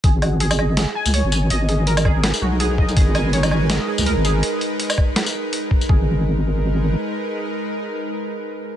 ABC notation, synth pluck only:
X:1
M:4/4
L:1/8
Q:"Swing 16ths" 1/4=164
K:G#m
V:1 name="Synth pluck"
G F G d G g c g | d G A G G F G d | G g c g d G A G | z8 |
G z6 z | z8 |]